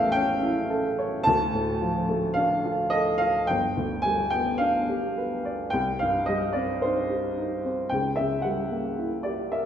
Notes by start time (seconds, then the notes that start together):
Already playing: A1 E2 E3 A3 E5 F5 G5 A5
0.12 C#4 G5
0.42 E4
0.70 A4
0.99 C#5
1.23 D2 A5
1.53 A2
1.82 F3
2.09 A3
2.34 D4 F5
2.65 F4
2.90 A4 D#5
3.18 F4 F5
3.47 G1 G5
3.77 D2
4.02 G3 G#5
4.30 B3 G5
4.58 D4 F5
4.89 G4
5.18 B4
5.45 D5
5.70 C2 G5
5.99 G2 F5
6.26 G3 D#5
6.53 C4 D5
6.82 D#4 C5
7.10 G4
7.37 D#4
7.65 C4
7.89 C#2 G5
8.16 C#3 E5
8.42 G3 F#5
8.71 A#3
8.99 E4
9.23 G4 D5
9.52 A#4 E5